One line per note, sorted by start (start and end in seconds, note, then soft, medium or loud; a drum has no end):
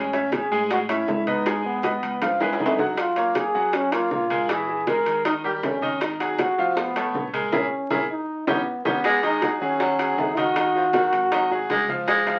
0.00 0.45 A1 medium
0.00 0.34 C#4 medium
0.13 0.44 C#4 medium
0.13 0.45 C#5 medium
0.13 0.45 E5 medium
0.13 high bongo soft
0.13 high conga soft
0.13 high timbale medium
0.32 0.70 G#4 medium
0.32 high bongo medium
0.32 high conga medium
0.32 high timbale medium
0.51 1.04 A2 medium
0.51 0.83 G#3 medium
0.51 0.83 G#4 medium
0.51 0.83 G#5 medium
0.51 high bongo soft
0.51 high conga soft
0.70 0.79 F#4 loud
0.70 high bongo medium
0.70 high conga soft
0.70 high timbale medium
0.89 1.20 C#4 medium
0.89 1.29 E4 medium
0.89 1.20 C#5 medium
0.89 1.20 E5 medium
0.89 high bongo soft
0.89 high conga soft
0.89 high timbale loud
1.08 1.97 G#2 medium
1.08 high bongo soft
1.08 low bongo medium
1.08 high conga medium
1.08 low timbale medium
1.27 1.42 B3 medium
1.27 1.65 D#4 medium
1.27 1.43 B4 medium
1.27 1.43 D#5 medium
1.27 high conga medium
1.27 high timbale medium
1.46 1.77 G#3 medium
1.46 1.77 G#4 medium
1.46 1.77 G#5 medium
1.46 high bongo medium
1.46 high conga soft
1.46 high timbale medium
1.64 2.29 B3 medium
1.64 high conga soft
1.83 2.15 B3 medium
1.83 2.15 B4 medium
1.83 2.15 D#5 medium
1.83 high bongo medium
1.83 high conga medium
1.83 high timbale medium
2.03 2.56 C#2 medium
2.03 high timbale medium
2.21 2.37 F3 medium
2.21 2.38 F4 medium
2.21 2.38 F5 medium
2.21 low bongo medium
2.21 high conga soft
2.21 high timbale loud
2.40 2.72 G#3 medium
2.40 2.72 G#4 medium
2.40 2.72 B4 medium
2.40 low bongo medium
2.40 high conga soft
2.40 high timbale medium
2.53 high timbale loud
2.59 3.49 F#2 medium
2.59 2.95 D#4 medium
2.59 low bongo medium
2.59 high conga medium
2.66 low timbale loud
2.78 3.10 F#3 medium
2.78 3.10 F#4 medium
2.78 3.10 F#5 medium
2.78 low bongo medium
2.78 high conga medium
2.78 low timbale medium
2.97 3.33 F4 medium
2.97 high bongo medium
2.97 high timbale medium
3.16 3.48 A#3 medium
3.16 3.48 A#4 medium
3.16 3.48 C#5 medium
3.16 high bongo soft
3.16 high conga soft
3.16 high timbale medium
3.35 3.76 G#4 medium
3.35 high bongo medium
3.35 high conga medium
3.35 high timbale medium
3.54 4.08 F#2 medium
3.54 3.86 F#3 medium
3.54 3.86 F#4 medium
3.54 3.86 F#5 medium
3.54 high bongo soft
3.54 high conga soft
3.73 3.95 C#4 loud
3.73 high bongo medium
3.73 high conga soft
3.73 high timbale medium
3.92 4.23 A#3 medium
3.92 4.12 F4 medium
3.92 4.24 A#4 medium
3.92 4.24 C#5 medium
3.92 high bongo soft
3.92 high conga soft
3.92 high timbale loud
4.11 5.00 A#1 medium
4.11 4.52 F4 medium
4.11 high bongo soft
4.11 low bongo medium
4.11 high conga medium
4.30 4.46 G#3 medium
4.30 4.46 G#4 medium
4.30 4.46 A#4 medium
4.30 high conga medium
4.30 high timbale medium
4.49 4.80 E3 medium
4.49 4.81 E4 medium
4.49 4.88 G#4 medium
4.49 4.81 E5 medium
4.49 high bongo medium
4.49 high conga soft
4.49 high timbale medium
4.68 high bongo soft
4.68 high conga soft
4.87 5.19 G#3 medium
4.87 5.19 G#4 medium
4.87 5.19 A#4 medium
4.87 5.23 A#4 medium
4.87 high bongo medium
4.87 high conga loud
4.87 high timbale medium
5.06 5.59 D#2 medium
5.06 high bongo soft
5.06 high timbale medium
5.25 5.41 D#3 medium
5.25 5.41 D#4 medium
5.25 5.34 D#4 medium
5.25 5.41 D#5 medium
5.25 high bongo medium
5.25 high conga soft
5.25 high timbale medium
5.44 5.75 G3 medium
5.44 5.75 G4 medium
5.44 5.54 G4 medium
5.44 5.76 A#4 medium
5.44 high bongo soft
5.44 high conga soft
5.63 6.52 G#1 medium
5.63 5.99 C#4 medium
5.63 high bongo soft
5.63 low bongo medium
5.63 high conga medium
5.63 high timbale medium
5.63 low timbale medium
5.81 6.13 D#3 medium
5.81 6.13 D#4 medium
5.81 6.14 D#5 medium
5.81 high conga medium
6.01 6.37 D#4 medium
6.01 high bongo medium
6.01 high conga soft
6.01 high timbale medium
6.20 6.51 F#3 medium
6.20 6.51 F#4 medium
6.20 6.51 G#4 medium
6.20 high bongo soft
6.20 high conga soft
6.20 high timbale medium
6.38 6.79 F#4 medium
6.38 high bongo medium
6.38 high conga loud
6.38 high timbale medium
6.57 7.10 F1 medium
6.57 6.89 F3 medium
6.57 6.89 F4 medium
6.57 6.90 F5 medium
6.57 high bongo soft
6.57 high conga soft
6.76 7.26 B3 medium
6.76 high bongo medium
6.76 high conga soft
6.76 high timbale medium
6.95 7.27 A3 medium
6.95 7.27 A4 medium
6.95 7.27 C#5 medium
6.95 high bongo soft
6.95 high conga soft
6.95 high timbale medium
7.14 7.50 A#1 medium
7.14 high bongo soft
7.14 low bongo medium
7.14 high conga medium
7.33 7.49 G#3 medium
7.33 7.49 G#4 medium
7.33 7.49 A#4 medium
7.33 high conga medium
7.33 high timbale medium
7.52 7.66 A#1 loud
7.52 7.89 C#4 medium
7.52 7.65 E4 medium
7.52 7.65 G#4 medium
7.52 7.65 A#4 medium
7.52 low bongo medium
7.52 high conga medium
7.52 high timbale medium
7.90 8.04 A#1 medium
7.90 8.00 C#4 medium
7.90 8.03 E4 loud
7.90 8.03 G#4 medium
7.90 8.03 A#4 medium
7.90 low bongo medium
7.90 high conga loud
7.90 high timbale medium
8.10 8.45 D#4 medium
8.47 8.61 D#2 medium
8.47 8.83 B3 medium
8.47 8.60 C#4 loud
8.47 8.60 D#4 medium
8.47 8.60 G4 medium
8.47 low bongo loud
8.47 high conga medium
8.47 high timbale loud
8.85 8.99 D#2 medium
8.85 9.21 B3 medium
8.85 8.97 C#4 medium
8.85 8.98 D#4 medium
8.85 8.97 G4 medium
8.85 low bongo medium
8.85 high conga loud
8.85 high timbale medium
9.04 9.50 G#3 loud
9.04 high bongo medium
9.04 high conga soft
9.04 high timbale medium
9.23 9.39 D#3 medium
9.23 9.39 D#4 medium
9.23 9.59 D#4 medium
9.23 9.39 D#5 medium
9.23 high bongo soft
9.23 high conga soft
9.23 high timbale medium
9.42 9.58 F#3 medium
9.42 9.58 F#4 medium
9.42 9.58 G#4 medium
9.42 high bongo medium
9.42 high conga medium
9.42 high timbale medium
9.61 10.14 D#2 medium
9.61 9.92 F#3 medium
9.61 10.20 C#4 medium
9.61 9.92 F#4 medium
9.61 9.93 G#4 medium
9.61 high bongo soft
9.61 high conga soft
9.79 10.39 F#3 medium
9.79 high bongo medium
9.79 high conga soft
9.79 high timbale medium
9.99 10.30 F#3 medium
9.99 10.30 F#4 medium
9.99 10.31 G#4 medium
9.99 high bongo soft
9.99 high conga soft
9.99 high timbale medium
10.18 11.07 D#2 medium
10.18 10.39 D#4 medium
10.18 high bongo soft
10.18 low bongo medium
10.18 high conga medium
10.18 low timbale medium
10.36 10.53 D#3 medium
10.36 10.53 D#4 medium
10.36 11.89 F#4 loud
10.36 10.53 D#5 medium
10.36 high conga medium
10.36 high timbale medium
10.55 10.87 D#3 medium
10.55 10.88 D#4 medium
10.55 10.88 D#5 medium
10.55 high bongo medium
10.55 high conga soft
10.55 high timbale medium
10.74 10.85 F3 medium
10.74 high bongo soft
10.74 high conga soft
10.93 11.14 D#3 medium
10.93 11.25 F#3 medium
10.93 11.25 F#4 medium
10.93 11.26 A#4 medium
10.93 high bongo medium
10.93 high conga loud
10.93 high timbale medium
11.12 11.66 G#1 medium
11.12 high bongo soft
11.12 high timbale medium
11.31 11.48 D#3 medium
11.31 11.52 F#3 medium
11.31 11.48 D#4 medium
11.31 11.48 D#5 medium
11.31 high bongo medium
11.31 high conga soft
11.31 low conga medium
11.31 high timbale loud
11.50 11.82 F#3 medium
11.50 11.82 F#4 medium
11.50 11.83 G#4 medium
11.50 high bongo soft
11.50 high conga soft
11.69 12.39 C#2 medium
11.69 11.90 G#3 medium
11.69 high bongo soft
11.69 low bongo medium
11.69 high conga medium
11.69 high timbale medium
11.88 12.20 F3 medium
11.88 12.20 F4 medium
11.88 12.21 F5 medium
11.88 high conga medium
12.08 12.39 G#3 medium
12.08 high bongo medium
12.08 high timbale medium
12.26 12.39 F3 medium
12.26 12.39 F4 medium
12.26 12.39 F5 medium
12.26 high bongo soft
12.26 high conga soft
12.26 high timbale medium